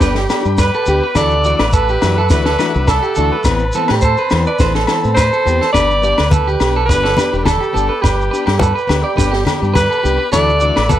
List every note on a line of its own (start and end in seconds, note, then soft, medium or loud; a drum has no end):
0.00 0.26 G1 loud
0.00 0.18 B3 medium
0.00 0.19 D4 medium
0.00 0.28 G4 medium
0.00 0.20 G4 medium
0.00 0.16 B4 medium
0.00 1.12 D5 medium
0.00 1.12 G5 medium
0.00 1.12 B5 medium
0.00 kick loud
0.00 snare medium
0.00 shekere loud
0.15 0.30 G4 medium
0.15 snare medium
0.15 shekere soft
0.29 0.44 B3 medium
0.29 0.44 D4 medium
0.29 0.57 G4 medium
0.29 0.42 G4 medium
0.29 snare medium
0.29 low agogo medium
0.29 shekere medium
0.43 0.70 G2 medium
0.43 0.62 D4 medium
0.43 0.60 G4 medium
0.43 shekere soft
0.58 0.73 B4 loud
0.58 1.12 B4 loud
0.58 kick medium
0.58 snare medium
0.58 low agogo medium
0.58 shekere medium
0.74 0.87 A4 medium
0.74 shekere soft
0.86 1.00 D2 medium
0.86 1.04 B3 medium
0.86 1.05 D4 medium
0.86 1.02 G4 medium
0.86 1.06 G4 medium
0.86 shekere medium
1.03 1.16 B4 medium
1.15 1.53 D2 loud
1.15 1.33 E3 medium
1.15 1.34 D4 medium
1.15 1.34 F#4 medium
1.15 1.44 A4 loud
1.15 1.76 D5 loud
1.15 3.43 E5 medium
1.15 3.43 F#5 medium
1.15 3.43 D6 medium
1.15 muted steel-string acoustic guitar stroke medium
1.15 kick medium
1.15 snare medium
1.15 low agogo medium
1.15 shekere loud
1.30 shekere soft
1.44 1.62 E3 medium
1.44 1.63 A3 medium
1.44 1.63 D4 medium
1.44 1.63 F#4 medium
1.44 1.59 D5 medium
1.44 shekere medium
1.59 1.96 A1 medium
1.59 1.73 B4 medium
1.59 snare medium
1.59 low agogo medium
1.59 shekere soft
1.73 1.88 A4 medium
1.73 2.30 B4 loud
1.73 kick loud
1.73 shekere loud
1.88 2.16 G4 medium
1.88 shekere soft
2.02 2.31 F#2 medium
2.02 2.20 E3 medium
2.02 2.20 A3 medium
2.02 2.20 D4 medium
2.02 2.21 F#4 medium
2.02 snare medium
2.02 low agogo medium
2.02 shekere medium
2.18 2.30 A4 medium
2.30 2.56 D2 loud
2.30 2.48 E3 medium
2.30 2.49 A3 medium
2.30 2.49 D4 medium
2.30 2.49 F#4 medium
2.30 2.91 B4 loud
2.30 2.45 B4 medium
2.30 kick medium
2.30 snare medium
2.30 shekere loud
2.46 2.59 A4 medium
2.46 snare medium
2.46 shekere soft
2.59 2.74 E3 medium
2.59 2.75 A3 medium
2.59 2.75 D4 medium
2.59 2.73 F#4 medium
2.59 2.86 B4 medium
2.59 snare medium
2.59 low agogo medium
2.59 shekere medium
2.75 3.00 C2 medium
2.75 2.92 D4 medium
2.75 2.91 F#4 medium
2.75 shekere soft
2.87 3.02 A4 medium
2.87 3.47 A4 loud
2.87 kick loud
2.87 snare medium
2.87 low agogo medium
2.87 shekere medium
3.02 3.16 G4 medium
3.02 shekere soft
3.15 3.30 D2 medium
3.15 3.34 E3 medium
3.15 3.35 A3 medium
3.15 3.35 D4 medium
3.15 3.36 F#4 medium
3.15 3.31 A4 medium
3.15 shekere medium
3.32 3.44 B4 medium
3.44 3.70 A1 medium
3.44 3.63 E3 medium
3.44 3.64 B3 medium
3.44 5.72 C4 medium
3.44 3.64 C4 medium
3.44 3.88 B4 loud
3.44 5.72 A5 medium
3.44 10.28 B5 medium
3.44 muted clean electric guitar stroke medium
3.44 kick medium
3.44 snare medium
3.44 low agogo medium
3.44 shekere loud
3.59 shekere soft
3.72 3.92 E3 medium
3.72 3.93 B3 medium
3.72 3.89 A4 medium
3.72 shekere medium
3.76 3.93 C4 medium
3.88 4.14 A2 medium
3.88 4.03 G4 medium
3.88 3.95 B4 medium
3.88 snare medium
3.88 low agogo medium
4.01 4.18 A4 medium
4.01 4.43 C5 loud
4.01 kick medium
4.01 shekere medium
4.17 4.46 B4 medium
4.17 shekere soft
4.30 4.45 E2 loud
4.30 4.49 E3 medium
4.30 4.50 B3 medium
4.30 4.50 C4 medium
4.30 snare medium
4.30 low agogo medium
4.30 shekere medium
4.46 4.88 B4 medium
4.46 4.60 D5 medium
4.46 shekere soft
4.59 4.85 A1 medium
4.59 4.78 E3 medium
4.59 4.78 B3 medium
4.59 4.75 C5 medium
4.59 muted steel-string acoustic guitar stroke medium
4.59 kick loud
4.59 snare medium
4.59 shekere medium
4.74 4.87 A4 medium
4.74 snare medium
4.74 shekere soft
4.87 5.04 E3 medium
4.87 5.05 B3 medium
4.87 5.16 A4 medium
4.87 snare medium
4.87 low agogo medium
4.87 shekere medium
4.92 5.02 C4 medium
5.03 5.29 A2 medium
5.03 5.22 B3 soft
5.03 5.20 C4 medium
5.03 shekere soft
5.14 5.32 B4 loud
5.14 5.69 C5 loud
5.14 kick loud
5.14 snare medium
5.14 low agogo medium
5.14 shekere loud
5.33 5.46 A4 medium
5.33 shekere soft
5.45 5.59 E2 medium
5.45 5.64 E3 medium
5.45 5.64 B3 medium
5.45 5.65 C4 medium
5.45 5.60 G4 medium
5.45 shekere medium
5.61 5.74 A4 medium
5.61 snare soft
5.61 shekere soft
5.73 6.12 G1 medium
5.73 5.92 B3 medium
5.73 5.92 D4 medium
5.73 5.92 G4 medium
5.73 6.02 B4 loud
5.73 6.27 D5 loud
5.73 10.29 D5 medium
5.73 10.29 G5 medium
5.73 kick medium
5.73 snare medium
5.73 muted conga soft
5.73 low agogo medium
5.73 shekere loud
5.90 shekere soft
6.02 6.20 B3 medium
6.02 6.21 D4 medium
6.02 6.21 G4 medium
6.02 6.18 D5 medium
6.02 shekere medium
6.18 6.55 D2 medium
6.18 6.31 B4 medium
6.18 snare medium
6.18 low agogo medium
6.18 shekere soft
6.30 6.47 A4 medium
6.30 6.84 B4 medium
6.30 kick loud
6.30 high conga medium
6.30 shekere medium
6.47 6.74 G4 medium
6.47 shekere soft
6.60 6.91 B1 medium
6.60 6.78 B3 soft
6.60 6.79 D4 medium
6.60 6.79 G4 medium
6.60 snare medium
6.60 low agogo medium
6.60 shekere medium
6.76 6.89 A4 medium
6.86 7.14 G1 loud
6.86 7.06 B3 medium
6.86 7.07 D4 medium
6.86 7.34 B4 loud
6.86 7.03 B4 medium
6.86 kick loud
6.86 snare medium
6.86 muted conga soft
6.91 7.08 G4 medium
6.91 shekere medium
7.04 7.17 A4 medium
7.04 snare medium
7.17 7.32 B3 medium
7.17 7.33 D4 medium
7.17 7.32 G4 medium
7.17 7.45 B4 medium
7.17 snare medium
7.17 muted conga soft
7.17 high conga medium
7.17 low agogo medium
7.17 shekere medium
7.33 7.58 E1 medium
7.33 7.51 D4 soft
7.33 7.49 G4 medium
7.33 shekere soft
7.38 7.45 B4 medium
7.44 8.03 A4 loud
7.44 7.60 A4 medium
7.44 kick loud
7.44 snare medium
7.44 high conga medium
7.44 low agogo medium
7.44 shekere medium
7.61 7.74 G4 medium
7.61 shekere soft
7.73 7.88 G1 medium
7.73 7.92 B3 medium
7.73 7.93 D4 medium
7.73 7.93 G4 medium
7.73 7.88 A4 medium
7.73 muted conga soft
7.73 shekere medium
7.89 8.01 B4 medium
8.01 8.28 G1 medium
8.01 8.46 G4 loud
8.01 8.30 B4 medium
8.01 kick medium
8.01 snare medium
8.01 muted conga soft
8.01 low agogo medium
8.01 shekere loud
8.21 shekere soft
8.31 8.49 B3 medium
8.31 8.50 D4 medium
8.31 8.51 G4 medium
8.31 8.46 B4 medium
8.31 shekere medium
8.46 8.72 G2 loud
8.46 8.59 G4 medium
8.46 8.60 G4 medium
8.46 snare medium
8.46 low agogo medium
8.46 shekere soft
8.59 8.75 A4 medium
8.59 9.05 B4 medium
8.59 kick medium
8.59 high conga loud
8.59 shekere medium
8.75 9.03 B4 medium
8.75 shekere soft
8.87 9.02 D2 loud
8.87 9.06 B3 medium
8.87 9.07 D4 medium
8.87 9.07 G4 medium
8.87 snare medium
8.87 low agogo medium
8.87 shekere medium
9.03 9.48 G4 medium
9.03 9.17 D5 medium
9.16 9.43 G1 medium
9.16 9.35 B3 medium
9.16 9.35 D4 medium
9.16 9.36 G4 medium
9.16 9.32 B4 medium
9.16 kick loud
9.16 snare medium
9.16 shekere loud
9.32 9.44 G4 medium
9.32 snare medium
9.32 shekere soft
9.45 9.61 B3 medium
9.45 9.61 D4 medium
9.45 9.73 G4 medium
9.45 9.60 G4 medium
9.45 snare medium
9.45 muted conga soft
9.45 high conga medium
9.45 low agogo medium
9.45 shekere medium
9.62 9.86 G2 medium
9.62 9.79 D4 medium
9.62 9.78 G4 medium
9.62 shekere soft
9.74 9.89 B4 medium
9.74 10.29 B4 loud
9.74 kick loud
9.74 snare medium
9.74 high conga medium
9.74 low agogo medium
9.74 shekere loud
9.90 10.03 A4 medium
9.90 shekere soft
10.03 10.17 C2 medium
10.03 10.21 B3 medium
10.03 10.22 D4 medium
10.03 10.18 G4 medium
10.03 10.22 G4 medium
10.03 muted conga soft
10.03 shekere medium
10.19 10.31 B4 medium
10.32 10.70 D2 medium
10.32 10.50 E3 medium
10.32 10.51 A3 medium
10.32 10.51 D4 medium
10.32 10.51 F#4 medium
10.32 10.59 A4 medium
10.32 10.93 D5 loud
10.32 10.99 E5 medium
10.32 10.99 F#5 medium
10.32 10.99 D6 medium
10.32 kick medium
10.32 snare medium
10.32 low agogo medium
10.32 shekere loud
10.49 shekere soft
10.60 10.78 E3 medium
10.60 10.79 A3 medium
10.60 10.79 D4 medium
10.60 10.79 F#4 medium
10.60 10.75 D5 medium
10.60 shekere medium
10.76 10.99 A1 medium
10.76 10.89 B4 medium
10.76 snare medium
10.76 low agogo medium
10.76 shekere soft
10.89 10.99 A4 medium
10.89 10.99 B4 loud
10.89 kick medium
10.89 high conga medium
10.89 shekere loud